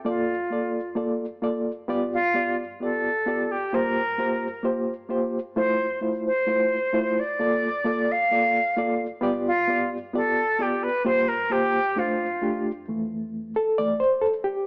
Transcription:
X:1
M:4/4
L:1/8
Q:1/4=131
K:F
V:1 name="Flute"
F4 z4 | z F2 z A3 G | B4 z4 | c2 z c4 d- |
d3 f4 z | z F2 z A2 G =B | c B G2 F3 z | z8 |]
V:2 name="Reed electric piano"
[B,FAd] z [B,FAd] z [B,FAd] z [B,FAd] z | [=B,FGd] z [B,FGd] z [B,FGd] z [B,FGd] z | [B,FGc] z [B,FGc] z [B,FGc] z [B,FGc] z | [A,EFc] z [A,EFc] z [A,EFc] z [A,EFc] z |
[B,FAd] z [B,FAd] z [B,FAd] z [B,FAd] z | [=B,FGd] z [B,FGd] z [B,FGd] z [B,FGd] z | [B,FGc] z [B,FGc] z [A,DFc] z [A,DFG] z | z3 A d c A G |]
V:3 name="Reed electric piano" clef=bass
F,,8 | G,,8 | G,,8 | F,,8 |
F,,8 | G,,8 | G,,4 F,,4 | [F,,E,A,]3 z [F,,E,A,] z3 |]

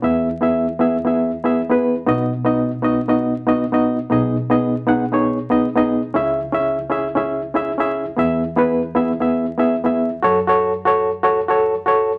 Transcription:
X:1
M:4/4
L:1/16
Q:1/4=118
K:E
V:1 name="Reed electric piano"
[B,EGe]2 z [B,EGe]2 z [B,EGe] z [B,EGe]2 z [B,EGe] z [B,EGB]2 z | [B,DFd]2 z [B,DFd]2 z [B,DFd] z [B,DFd]2 z [B,DFd] z [B,DFd]2 z | [B,DGd]2 z [B,DGd]2 z [B,DGf] z [B,DGc]2 z [B,DGd] z [B,DGd]2 z | [CEGe]2 z [CEGe]2 z [CEGe] z [CEGe]2 z [CEGe] z [CEGe]2 z |
[B,EGe]2 z [B,EGB]2 z [B,EGe] z [B,EGe]2 z [B,EGe] z [B,EGe]2 z | [FAc] z [FAc]2 z [FAc]2 z [FAc] z [FAc]2 z [FAc]2 z |]
V:2 name="Reed electric piano" clef=bass
[E,,E,]16 | [B,,,B,,]16 | [B,,,B,,]16 | [C,,C,]16 |
[E,,E,]16 | F,,16 |]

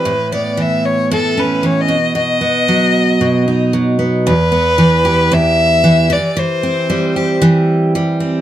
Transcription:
X:1
M:4/4
L:1/16
Q:"Swing 16ths" 1/4=114
K:Em
V:1 name="Violin"
B2 d2 e2 ^c2 A2 B2 c ^d3 | ^d12 z4 | B8 e6 d2 | c8 z8 |]
V:2 name="Steel-string acoustic guitar" clef=bass
A,,2 B,2 E,4 A,,2 ^C2 E,2 B,,2 | B,,2 B,2 F,4 B,,2 ^D2 F,2 B,2 | E,,2 B,2 E,2 G2 E,,4 E,2 E,2 | E,2 C2 G,2 G2 E,4 G,2 C2 |]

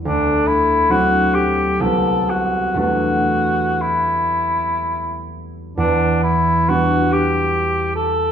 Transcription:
X:1
M:3/4
L:1/8
Q:1/4=66
K:Em
V:1 name="Cor anglais"
D E F G A F | F2 E3 z | D E F G2 A |]
V:2 name="Harp"
[D,,DF]2 [F,CDE]2 [C,,G,B,EG]2 | [E,,G,A,DF]6 | E,,2 [G,B,DF]4 |]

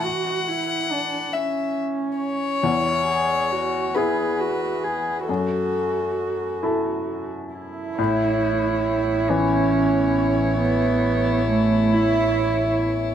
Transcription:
X:1
M:6/8
L:1/16
Q:3/8=46
K:A
V:1 name="Viola"
z12 | z12 | z12 | c12- |
c12 |]
V:2 name="Violin"
f6 e2 z2 c2- | c6 B6 | A6 z6 | z6 E6- |
E12 |]
V:3 name="Ambient pad"
z12 | z12 | z12 | [B,Ec]12- |
[B,Ec]12 |]
V:4 name="Cello"
F2 E2 D2 C6 | E2 G2 F2 G2 F2 G2 | F8- F z E2- | E6 C6 |
B,4 A,2 E4 z2 |]
V:5 name="Upright piano" clef=bass
E,12 | E,,6 [EG]6 | F,,6 [EA]6 | A,,6 E,6- |
E,12 |]
V:6 name="Double bass" clef=bass
z12 | z12 | z12 | A,,,12- |
A,,,12 |]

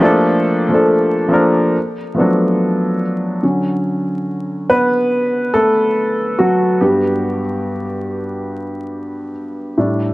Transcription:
X:1
M:4/4
L:1/16
Q:"Swing 16ths" 1/4=71
K:Glyd
V:1 name="Upright piano"
G z12 z3 | z6 [B,B]4 [A,A]4 [F,F]2 | [G,G]12 z4 |]
V:2 name="Upright piano"
[=F,A,_B,DA]2 z [F,A,B,DA]2 z [F,B,DA_B]2 z2 [F,^F,A,=B,DA]4 z2 | [D,F,C]16 | [G,,B,F]2 z12 [A,,G,D]2 |]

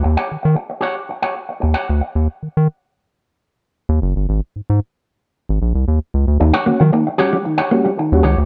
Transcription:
X:1
M:4/4
L:1/16
Q:1/4=113
K:Ab
V:1 name="Clean electric guitar"
z [Gd^f] z4 [Gdf] z2 [Gdf] z3 [Gdf] z2 | z16 | z16 | z [Gd^f] z4 [Gdf] z2 [Gdf] z4 [Gdf] z |]
V:2 name="Tonewheel organ"
z16 | z16 | z16 | z2 [D^F] z3 [G,DF] [DF] z2 [G,DF] [DF] z [G,DF] [DF] z |]
V:3 name="Tonewheel organ" clef=bass
z16 | z16 | z16 | E,2 z2 E,2 z2 E,2 z2 E,2 z2 |]
V:4 name="Clean electric guitar" clef=bass
z16 | z16 | z16 | z2 B, ^F, B, z2 G, z2 B, G, z2 E, z |]
V:5 name="Analog synth bass" clef=bass
E,, z E, E, z8 E,, z =D,, z | E,, z E, E, z8 z E,, ^F,,, G,,, | A,,, z A,, A,, z4 z A,,, B,,, C,, E,, z D,, =D,, | E,, z E, E, z8 z E,, D,, =D,, |]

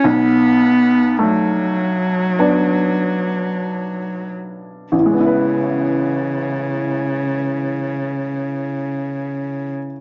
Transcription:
X:1
M:4/4
L:1/8
Q:1/4=47
K:A
V:1 name="Upright piano"
B,,,2 A,2 [B,D]4 | [A,,,A,,G,B,EB]8 |]
V:2 name="Cello" clef=bass
B,2 F,4- F, z | C,8 |]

